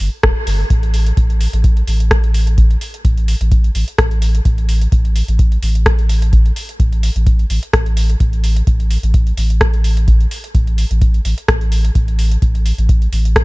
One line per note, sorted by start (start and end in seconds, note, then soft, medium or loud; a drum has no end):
0.00 open hi-hat medium
0.23 0.32 E1 loud
0.23 kick loud
0.23 cross-stick loud
0.47 0.64 G1 loud
0.47 open hi-hat medium
0.70 1.12 A1 loud
0.70 kick loud
0.70 closed hi-hat soft
0.83 closed hi-hat soft
0.94 open hi-hat medium
1.06 closed hi-hat soft
1.17 1.47 A1 medium
1.17 kick loud
1.17 closed hi-hat soft
1.30 closed hi-hat soft
1.41 open hi-hat medium
1.53 1.82 A1 loud
1.53 closed hi-hat soft
1.64 kick loud
1.64 closed hi-hat soft
1.77 closed hi-hat soft
1.87 2.76 A1 medium
1.87 open hi-hat medium
2.00 closed hi-hat soft
2.11 kick loud
2.11 cross-stick medium
2.11 closed hi-hat soft
2.24 closed hi-hat soft
2.34 open hi-hat medium
2.47 closed hi-hat soft
2.58 kick loud
2.58 closed hi-hat soft
2.71 closed hi-hat soft
2.81 open hi-hat medium
2.94 closed hi-hat soft
3.05 3.35 A1 medium
3.05 kick loud
3.05 closed hi-hat soft
3.17 closed hi-hat soft
3.28 open hi-hat medium
3.41 3.70 A1 loud
3.41 closed hi-hat soft
3.52 kick loud
3.52 closed hi-hat soft
3.64 closed hi-hat soft
3.75 3.84 A1 medium
3.75 open hi-hat medium
3.88 closed hi-hat soft
3.98 4.40 A1 loud
3.98 kick loud
3.98 cross-stick medium
3.98 closed hi-hat soft
4.11 closed hi-hat soft
4.22 open hi-hat medium
4.35 closed hi-hat soft
4.45 4.87 A1 loud
4.45 kick loud
4.45 closed hi-hat soft
4.58 closed hi-hat soft
4.69 open hi-hat medium
4.81 closed hi-hat soft
4.92 5.22 A1 medium
4.92 kick loud
4.92 closed hi-hat soft
5.05 closed hi-hat soft
5.16 open hi-hat medium
5.28 5.57 A1 loud
5.28 closed hi-hat soft
5.39 kick loud
5.39 closed hi-hat soft
5.52 closed hi-hat soft
5.62 6.51 A1 medium
5.62 open hi-hat medium
5.75 closed hi-hat soft
5.86 kick loud
5.86 cross-stick medium
5.86 closed hi-hat soft
5.99 closed hi-hat soft
6.09 open hi-hat medium
6.22 closed hi-hat soft
6.33 kick loud
6.33 closed hi-hat soft
6.46 closed hi-hat soft
6.56 open hi-hat medium
6.69 closed hi-hat soft
6.80 7.10 A1 medium
6.80 kick loud
6.80 closed hi-hat soft
6.92 closed hi-hat soft
7.03 open hi-hat medium
7.16 7.45 A1 loud
7.16 closed hi-hat soft
7.27 kick loud
7.27 closed hi-hat soft
7.39 closed hi-hat soft
7.50 7.59 A1 medium
7.50 open hi-hat medium
7.63 closed hi-hat soft
7.73 8.15 A1 loud
7.73 kick loud
7.73 cross-stick medium
7.73 closed hi-hat soft
7.86 closed hi-hat soft
7.97 open hi-hat medium
8.10 closed hi-hat soft
8.20 8.62 A1 loud
8.20 kick loud
8.20 closed hi-hat soft
8.33 closed hi-hat soft
8.44 open hi-hat medium
8.56 closed hi-hat soft
8.67 8.97 A1 medium
8.67 kick loud
8.67 closed hi-hat soft
8.80 closed hi-hat soft
8.91 open hi-hat medium
9.03 9.32 A1 loud
9.03 closed hi-hat soft
9.14 kick loud
9.14 closed hi-hat soft
9.27 closed hi-hat soft
9.37 10.26 A1 medium
9.37 open hi-hat medium
9.50 closed hi-hat soft
9.61 kick loud
9.61 cross-stick medium
9.61 closed hi-hat soft
9.74 closed hi-hat soft
9.84 open hi-hat medium
9.97 closed hi-hat soft
10.08 kick loud
10.08 closed hi-hat soft
10.21 closed hi-hat soft
10.31 open hi-hat medium
10.44 closed hi-hat soft
10.55 10.85 A1 medium
10.55 kick loud
10.55 closed hi-hat soft
10.67 closed hi-hat soft
10.78 open hi-hat medium
10.91 11.20 A1 loud
10.91 closed hi-hat soft
11.02 kick loud
11.02 closed hi-hat soft
11.14 closed hi-hat soft
11.25 11.34 A1 medium
11.25 open hi-hat medium
11.38 closed hi-hat soft
11.48 11.90 A1 loud
11.48 kick loud
11.48 cross-stick medium
11.48 closed hi-hat soft
11.61 closed hi-hat soft
11.72 open hi-hat medium
11.85 closed hi-hat soft
11.95 12.37 A1 loud
11.95 kick loud
11.95 closed hi-hat soft
12.08 closed hi-hat soft
12.19 open hi-hat medium
12.32 closed hi-hat soft
12.42 12.72 A1 medium
12.42 kick loud
12.42 closed hi-hat soft
12.55 closed hi-hat soft
12.66 open hi-hat medium
12.78 13.07 A1 loud
12.78 closed hi-hat soft
12.89 kick loud
12.89 closed hi-hat soft
13.02 closed hi-hat soft
13.12 13.44 A1 medium
13.12 open hi-hat medium
13.25 closed hi-hat soft
13.36 kick loud
13.36 cross-stick medium
13.36 closed hi-hat soft